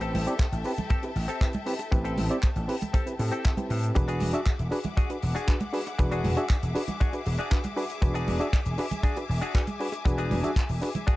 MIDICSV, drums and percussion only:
0, 0, Header, 1, 2, 480
1, 0, Start_track
1, 0, Tempo, 508475
1, 1815, Time_signature, 4, 2, 24, 8
1, 10538, End_track
2, 0, Start_track
2, 0, Title_t, "Drums"
2, 9, Note_on_c, 9, 42, 49
2, 103, Note_off_c, 9, 42, 0
2, 140, Note_on_c, 9, 63, 84
2, 141, Note_on_c, 9, 46, 115
2, 235, Note_off_c, 9, 63, 0
2, 236, Note_off_c, 9, 46, 0
2, 252, Note_on_c, 9, 42, 53
2, 347, Note_off_c, 9, 42, 0
2, 368, Note_on_c, 9, 42, 70
2, 372, Note_on_c, 9, 36, 120
2, 376, Note_on_c, 9, 39, 111
2, 462, Note_off_c, 9, 42, 0
2, 466, Note_off_c, 9, 36, 0
2, 470, Note_off_c, 9, 39, 0
2, 497, Note_on_c, 9, 42, 58
2, 591, Note_off_c, 9, 42, 0
2, 608, Note_on_c, 9, 46, 99
2, 618, Note_on_c, 9, 60, 57
2, 703, Note_off_c, 9, 46, 0
2, 713, Note_off_c, 9, 60, 0
2, 732, Note_on_c, 9, 42, 50
2, 737, Note_on_c, 9, 63, 67
2, 739, Note_on_c, 9, 64, 94
2, 826, Note_off_c, 9, 42, 0
2, 832, Note_off_c, 9, 63, 0
2, 833, Note_off_c, 9, 64, 0
2, 848, Note_on_c, 9, 42, 71
2, 854, Note_on_c, 9, 36, 111
2, 943, Note_off_c, 9, 42, 0
2, 948, Note_off_c, 9, 36, 0
2, 971, Note_on_c, 9, 42, 54
2, 983, Note_on_c, 9, 60, 47
2, 1065, Note_off_c, 9, 42, 0
2, 1078, Note_off_c, 9, 60, 0
2, 1094, Note_on_c, 9, 46, 105
2, 1188, Note_off_c, 9, 46, 0
2, 1216, Note_on_c, 9, 42, 52
2, 1310, Note_off_c, 9, 42, 0
2, 1333, Note_on_c, 9, 36, 121
2, 1339, Note_on_c, 9, 39, 121
2, 1342, Note_on_c, 9, 42, 75
2, 1427, Note_off_c, 9, 36, 0
2, 1434, Note_off_c, 9, 39, 0
2, 1436, Note_off_c, 9, 42, 0
2, 1445, Note_on_c, 9, 42, 49
2, 1460, Note_on_c, 9, 63, 94
2, 1540, Note_off_c, 9, 42, 0
2, 1554, Note_off_c, 9, 63, 0
2, 1571, Note_on_c, 9, 46, 117
2, 1665, Note_off_c, 9, 46, 0
2, 1690, Note_on_c, 9, 42, 49
2, 1692, Note_on_c, 9, 60, 59
2, 1785, Note_off_c, 9, 42, 0
2, 1787, Note_off_c, 9, 60, 0
2, 1814, Note_on_c, 9, 36, 107
2, 1816, Note_on_c, 9, 42, 72
2, 1909, Note_off_c, 9, 36, 0
2, 1910, Note_off_c, 9, 42, 0
2, 1935, Note_on_c, 9, 42, 52
2, 2029, Note_off_c, 9, 42, 0
2, 2054, Note_on_c, 9, 63, 96
2, 2059, Note_on_c, 9, 46, 115
2, 2149, Note_off_c, 9, 63, 0
2, 2154, Note_off_c, 9, 46, 0
2, 2174, Note_on_c, 9, 42, 51
2, 2268, Note_off_c, 9, 42, 0
2, 2290, Note_on_c, 9, 39, 104
2, 2291, Note_on_c, 9, 42, 69
2, 2298, Note_on_c, 9, 36, 108
2, 2384, Note_off_c, 9, 39, 0
2, 2385, Note_off_c, 9, 42, 0
2, 2392, Note_off_c, 9, 36, 0
2, 2415, Note_on_c, 9, 42, 54
2, 2509, Note_off_c, 9, 42, 0
2, 2538, Note_on_c, 9, 46, 109
2, 2540, Note_on_c, 9, 60, 53
2, 2632, Note_off_c, 9, 46, 0
2, 2635, Note_off_c, 9, 60, 0
2, 2654, Note_on_c, 9, 42, 58
2, 2662, Note_on_c, 9, 63, 68
2, 2666, Note_on_c, 9, 64, 83
2, 2749, Note_off_c, 9, 42, 0
2, 2756, Note_off_c, 9, 63, 0
2, 2760, Note_off_c, 9, 64, 0
2, 2775, Note_on_c, 9, 36, 106
2, 2777, Note_on_c, 9, 42, 69
2, 2870, Note_off_c, 9, 36, 0
2, 2871, Note_off_c, 9, 42, 0
2, 2897, Note_on_c, 9, 42, 56
2, 2991, Note_off_c, 9, 42, 0
2, 3014, Note_on_c, 9, 46, 102
2, 3016, Note_on_c, 9, 60, 51
2, 3108, Note_off_c, 9, 46, 0
2, 3111, Note_off_c, 9, 60, 0
2, 3130, Note_on_c, 9, 42, 53
2, 3225, Note_off_c, 9, 42, 0
2, 3257, Note_on_c, 9, 42, 76
2, 3260, Note_on_c, 9, 36, 107
2, 3260, Note_on_c, 9, 39, 103
2, 3351, Note_off_c, 9, 42, 0
2, 3354, Note_off_c, 9, 36, 0
2, 3354, Note_off_c, 9, 39, 0
2, 3373, Note_on_c, 9, 63, 91
2, 3376, Note_on_c, 9, 42, 51
2, 3467, Note_off_c, 9, 63, 0
2, 3471, Note_off_c, 9, 42, 0
2, 3495, Note_on_c, 9, 46, 108
2, 3589, Note_off_c, 9, 46, 0
2, 3618, Note_on_c, 9, 42, 54
2, 3712, Note_off_c, 9, 42, 0
2, 3733, Note_on_c, 9, 42, 68
2, 3741, Note_on_c, 9, 36, 103
2, 3827, Note_off_c, 9, 42, 0
2, 3835, Note_off_c, 9, 36, 0
2, 3855, Note_on_c, 9, 42, 55
2, 3949, Note_off_c, 9, 42, 0
2, 3967, Note_on_c, 9, 46, 108
2, 3978, Note_on_c, 9, 63, 82
2, 4062, Note_off_c, 9, 46, 0
2, 4072, Note_off_c, 9, 63, 0
2, 4096, Note_on_c, 9, 42, 50
2, 4191, Note_off_c, 9, 42, 0
2, 4213, Note_on_c, 9, 39, 104
2, 4214, Note_on_c, 9, 36, 106
2, 4214, Note_on_c, 9, 42, 68
2, 4307, Note_off_c, 9, 39, 0
2, 4308, Note_off_c, 9, 36, 0
2, 4308, Note_off_c, 9, 42, 0
2, 4335, Note_on_c, 9, 42, 55
2, 4429, Note_off_c, 9, 42, 0
2, 4451, Note_on_c, 9, 60, 57
2, 4455, Note_on_c, 9, 46, 91
2, 4546, Note_off_c, 9, 60, 0
2, 4549, Note_off_c, 9, 46, 0
2, 4568, Note_on_c, 9, 42, 53
2, 4575, Note_on_c, 9, 64, 85
2, 4578, Note_on_c, 9, 63, 67
2, 4663, Note_off_c, 9, 42, 0
2, 4670, Note_off_c, 9, 64, 0
2, 4672, Note_off_c, 9, 63, 0
2, 4696, Note_on_c, 9, 36, 112
2, 4697, Note_on_c, 9, 42, 68
2, 4790, Note_off_c, 9, 36, 0
2, 4792, Note_off_c, 9, 42, 0
2, 4813, Note_on_c, 9, 42, 50
2, 4816, Note_on_c, 9, 60, 45
2, 4908, Note_off_c, 9, 42, 0
2, 4910, Note_off_c, 9, 60, 0
2, 4933, Note_on_c, 9, 46, 99
2, 5028, Note_off_c, 9, 46, 0
2, 5060, Note_on_c, 9, 42, 53
2, 5155, Note_off_c, 9, 42, 0
2, 5169, Note_on_c, 9, 42, 74
2, 5175, Note_on_c, 9, 36, 106
2, 5176, Note_on_c, 9, 39, 110
2, 5263, Note_off_c, 9, 42, 0
2, 5269, Note_off_c, 9, 36, 0
2, 5270, Note_off_c, 9, 39, 0
2, 5290, Note_on_c, 9, 42, 51
2, 5293, Note_on_c, 9, 63, 86
2, 5384, Note_off_c, 9, 42, 0
2, 5388, Note_off_c, 9, 63, 0
2, 5415, Note_on_c, 9, 46, 103
2, 5509, Note_off_c, 9, 46, 0
2, 5539, Note_on_c, 9, 42, 51
2, 5539, Note_on_c, 9, 60, 61
2, 5634, Note_off_c, 9, 42, 0
2, 5634, Note_off_c, 9, 60, 0
2, 5651, Note_on_c, 9, 42, 70
2, 5656, Note_on_c, 9, 36, 102
2, 5745, Note_off_c, 9, 42, 0
2, 5750, Note_off_c, 9, 36, 0
2, 5774, Note_on_c, 9, 42, 55
2, 5868, Note_off_c, 9, 42, 0
2, 5893, Note_on_c, 9, 63, 84
2, 5896, Note_on_c, 9, 46, 102
2, 5988, Note_off_c, 9, 63, 0
2, 5990, Note_off_c, 9, 46, 0
2, 6012, Note_on_c, 9, 42, 53
2, 6106, Note_off_c, 9, 42, 0
2, 6129, Note_on_c, 9, 39, 104
2, 6135, Note_on_c, 9, 36, 98
2, 6143, Note_on_c, 9, 42, 67
2, 6223, Note_off_c, 9, 39, 0
2, 6230, Note_off_c, 9, 36, 0
2, 6237, Note_off_c, 9, 42, 0
2, 6257, Note_on_c, 9, 42, 56
2, 6351, Note_off_c, 9, 42, 0
2, 6376, Note_on_c, 9, 46, 92
2, 6384, Note_on_c, 9, 60, 62
2, 6470, Note_off_c, 9, 46, 0
2, 6479, Note_off_c, 9, 60, 0
2, 6494, Note_on_c, 9, 64, 82
2, 6495, Note_on_c, 9, 42, 51
2, 6497, Note_on_c, 9, 63, 60
2, 6588, Note_off_c, 9, 64, 0
2, 6589, Note_off_c, 9, 42, 0
2, 6591, Note_off_c, 9, 63, 0
2, 6614, Note_on_c, 9, 42, 79
2, 6618, Note_on_c, 9, 36, 113
2, 6708, Note_off_c, 9, 42, 0
2, 6712, Note_off_c, 9, 36, 0
2, 6733, Note_on_c, 9, 42, 49
2, 6828, Note_off_c, 9, 42, 0
2, 6851, Note_on_c, 9, 46, 97
2, 6858, Note_on_c, 9, 60, 50
2, 6946, Note_off_c, 9, 46, 0
2, 6953, Note_off_c, 9, 60, 0
2, 6971, Note_on_c, 9, 42, 54
2, 7065, Note_off_c, 9, 42, 0
2, 7092, Note_on_c, 9, 42, 72
2, 7095, Note_on_c, 9, 36, 99
2, 7096, Note_on_c, 9, 39, 101
2, 7187, Note_off_c, 9, 42, 0
2, 7190, Note_off_c, 9, 36, 0
2, 7191, Note_off_c, 9, 39, 0
2, 7210, Note_on_c, 9, 42, 59
2, 7219, Note_on_c, 9, 63, 79
2, 7304, Note_off_c, 9, 42, 0
2, 7313, Note_off_c, 9, 63, 0
2, 7337, Note_on_c, 9, 46, 92
2, 7431, Note_off_c, 9, 46, 0
2, 7455, Note_on_c, 9, 42, 52
2, 7550, Note_off_c, 9, 42, 0
2, 7572, Note_on_c, 9, 36, 108
2, 7573, Note_on_c, 9, 42, 74
2, 7667, Note_off_c, 9, 36, 0
2, 7668, Note_off_c, 9, 42, 0
2, 7694, Note_on_c, 9, 42, 51
2, 7789, Note_off_c, 9, 42, 0
2, 7814, Note_on_c, 9, 46, 104
2, 7815, Note_on_c, 9, 63, 81
2, 7909, Note_off_c, 9, 46, 0
2, 7910, Note_off_c, 9, 63, 0
2, 7939, Note_on_c, 9, 42, 53
2, 8033, Note_off_c, 9, 42, 0
2, 8053, Note_on_c, 9, 42, 73
2, 8054, Note_on_c, 9, 36, 112
2, 8059, Note_on_c, 9, 39, 117
2, 8147, Note_off_c, 9, 42, 0
2, 8148, Note_off_c, 9, 36, 0
2, 8154, Note_off_c, 9, 39, 0
2, 8172, Note_on_c, 9, 42, 58
2, 8266, Note_off_c, 9, 42, 0
2, 8290, Note_on_c, 9, 46, 106
2, 8299, Note_on_c, 9, 60, 71
2, 8384, Note_off_c, 9, 46, 0
2, 8393, Note_off_c, 9, 60, 0
2, 8414, Note_on_c, 9, 64, 88
2, 8415, Note_on_c, 9, 42, 53
2, 8416, Note_on_c, 9, 63, 56
2, 8508, Note_off_c, 9, 64, 0
2, 8509, Note_off_c, 9, 42, 0
2, 8511, Note_off_c, 9, 63, 0
2, 8528, Note_on_c, 9, 36, 98
2, 8531, Note_on_c, 9, 42, 73
2, 8623, Note_off_c, 9, 36, 0
2, 8626, Note_off_c, 9, 42, 0
2, 8651, Note_on_c, 9, 42, 54
2, 8660, Note_on_c, 9, 60, 49
2, 8746, Note_off_c, 9, 42, 0
2, 8755, Note_off_c, 9, 60, 0
2, 8788, Note_on_c, 9, 46, 100
2, 8882, Note_off_c, 9, 46, 0
2, 8895, Note_on_c, 9, 42, 51
2, 8989, Note_off_c, 9, 42, 0
2, 9013, Note_on_c, 9, 36, 113
2, 9013, Note_on_c, 9, 42, 77
2, 9020, Note_on_c, 9, 39, 117
2, 9107, Note_off_c, 9, 36, 0
2, 9107, Note_off_c, 9, 42, 0
2, 9115, Note_off_c, 9, 39, 0
2, 9129, Note_on_c, 9, 42, 59
2, 9133, Note_on_c, 9, 63, 77
2, 9224, Note_off_c, 9, 42, 0
2, 9227, Note_off_c, 9, 63, 0
2, 9256, Note_on_c, 9, 46, 110
2, 9350, Note_off_c, 9, 46, 0
2, 9367, Note_on_c, 9, 60, 62
2, 9377, Note_on_c, 9, 42, 58
2, 9461, Note_off_c, 9, 60, 0
2, 9471, Note_off_c, 9, 42, 0
2, 9492, Note_on_c, 9, 36, 109
2, 9503, Note_on_c, 9, 42, 69
2, 9587, Note_off_c, 9, 36, 0
2, 9598, Note_off_c, 9, 42, 0
2, 9613, Note_on_c, 9, 42, 57
2, 9707, Note_off_c, 9, 42, 0
2, 9732, Note_on_c, 9, 46, 91
2, 9734, Note_on_c, 9, 63, 93
2, 9827, Note_off_c, 9, 46, 0
2, 9828, Note_off_c, 9, 63, 0
2, 9853, Note_on_c, 9, 64, 73
2, 9858, Note_on_c, 9, 42, 58
2, 9947, Note_off_c, 9, 64, 0
2, 9952, Note_off_c, 9, 42, 0
2, 9971, Note_on_c, 9, 36, 106
2, 9975, Note_on_c, 9, 42, 78
2, 9983, Note_on_c, 9, 39, 123
2, 10066, Note_off_c, 9, 36, 0
2, 10069, Note_off_c, 9, 42, 0
2, 10077, Note_off_c, 9, 39, 0
2, 10091, Note_on_c, 9, 46, 64
2, 10186, Note_off_c, 9, 46, 0
2, 10209, Note_on_c, 9, 46, 91
2, 10222, Note_on_c, 9, 60, 68
2, 10303, Note_off_c, 9, 46, 0
2, 10317, Note_off_c, 9, 60, 0
2, 10336, Note_on_c, 9, 42, 57
2, 10337, Note_on_c, 9, 64, 83
2, 10345, Note_on_c, 9, 63, 63
2, 10431, Note_off_c, 9, 42, 0
2, 10431, Note_off_c, 9, 64, 0
2, 10439, Note_off_c, 9, 63, 0
2, 10454, Note_on_c, 9, 42, 77
2, 10457, Note_on_c, 9, 36, 114
2, 10538, Note_off_c, 9, 36, 0
2, 10538, Note_off_c, 9, 42, 0
2, 10538, End_track
0, 0, End_of_file